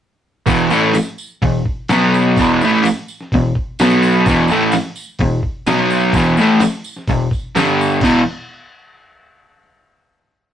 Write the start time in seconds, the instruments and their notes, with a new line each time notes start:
0.46 overdriven electric guitar E2 B2 E3, kick, open hi-hat, tambourine
0.70 overdriven electric guitar A2 E3 A3, tambourine
0.93 snare, open hi-hat, tambourine
1.18 tambourine
1.42 overdriven electric guitar E2 B2, kick, open hi-hat
1.65 kick
1.88 overdriven electric guitar B2 F#3 B3, snare, open hi-hat, tambourine
2.14 tambourine
2.36 overdriven electric guitar E2 B2, kick, open hi-hat, tambourine
2.40 overdriven electric guitar E3
2.61 overdriven electric guitar A2 E3 A3, tambourine
2.83 snare, open hi-hat, tambourine
3.08 tambourine
3.21 snare
3.32 overdriven electric guitar E2 B2, kick, open hi-hat
3.55 kick
3.79 overdriven electric guitar B2 F#3 B3, snare, open hi-hat, tambourine
4.02 tambourine
4.26 overdriven electric guitar E2 B2 E3, kick, open hi-hat, tambourine
4.48 overdriven electric guitar A2 E3, tambourine
4.52 overdriven electric guitar A3
4.72 snare, open hi-hat, tambourine
4.96 tambourine
5.19 overdriven electric guitar E2 B2, kick, open hi-hat
5.43 kick
5.67 overdriven electric guitar B2 F#3 B3, snare, open hi-hat, tambourine
5.90 tambourine
6.12 overdriven electric guitar E2 B2, kick, open hi-hat, tambourine
6.17 overdriven electric guitar E3
6.37 overdriven electric guitar A2 E3 A3, tambourine
6.59 snare, open hi-hat, tambourine
6.84 tambourine
6.96 snare
7.07 overdriven electric guitar E2 B2, kick, open hi-hat, tambourine
7.31 kick, tambourine
7.55 overdriven electric guitar G2 D3 G3, snare, open hi-hat, tambourine
7.81 tambourine
8.01 overdriven electric guitar E2 B2 E3, kick, crash, tambourine